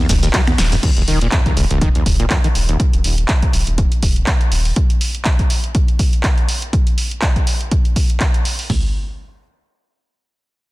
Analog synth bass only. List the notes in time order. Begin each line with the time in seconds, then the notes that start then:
0.09 D#1
0.59 D#1
0.97 D#1
1.08 D#1
1.57 D#1
1.71 D#1
2.06 D#1
2.55 D#1
2.93 D#1
3.04 D#1
3.53 D#1
3.67 D#1
4.03 D#1
4.52 D#1